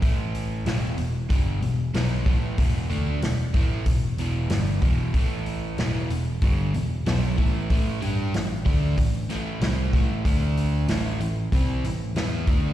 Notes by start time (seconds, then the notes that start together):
0.02 A1 A2 E3 A3, kick, open hi-hat
0.35 open hi-hat
0.66 E1 E2 B2 E3, snare, open hi-hat
0.98 E1 E2 B2, open hi-hat
1.30 G1 G2 D3 G3, kick, open hi-hat
1.61 E1 E2 B2, open hi-hat
1.94 B1 B2 F#3 B3, snare, open hi-hat
2.26 A1 A2 E3 A3, kick, open hi-hat
2.58 E1 E2 B2 E3, kick, open hi-hat
2.90 D2 D3 A3 D4, open hi-hat
3.22 E1 E2 B2, snare, open hi-hat
3.54 A1 A2 E3 A3, kick, open hi-hat
3.86 E1 E2 B2, kick, open hi-hat
4.17 E1 E2 B2 E3, open hi-hat
4.49 G1 G2 D3 G3, snare, open hi-hat
4.82 E1 E2 B2 E3, kick, open hi-hat
5.14 A1 A2 E3 A3, kick, open hi-hat
5.46 open hi-hat
5.78 E1 E2 B2 E3, snare, open hi-hat
6.10 E1 E2 B2, open hi-hat
6.42 G1 G2 D3 G3, kick, open hi-hat
6.74 E1 E2 B2, open hi-hat
7.06 B1 B2 F#3 B3, snare, open hi-hat
7.37 A1 A2 E3 A3, kick, open hi-hat
7.70 A1 A2 E3 A3, kick, open hi-hat
8.02 G2 G3 D4 G4, open hi-hat
8.34 A1 A2 E3, snare, open hi-hat
8.65 D2 D3 A3 D4, kick, open hi-hat
8.97 A1 A2 E3, kick, open hi-hat
9.29 A1 A2 E3 A3, snare, open hi-hat
9.61 C2 C3 G3 C4, snare, open hi-hat
9.93 A1 A2 E3 A3, kick, open hi-hat
10.25 D2 D3 A3 D4, kick, open hi-hat
10.57 open hi-hat
10.88 A1 A2 E3 A3, snare, open hi-hat
11.20 A1 A2 E3, open hi-hat
11.52 C2 C3 G3 C4, kick, open hi-hat
11.84 A1 A2 E3, open hi-hat
12.15 E2 E3 B3 E4, snare, open hi-hat
12.47 D2 D3 A3 D4, kick, open hi-hat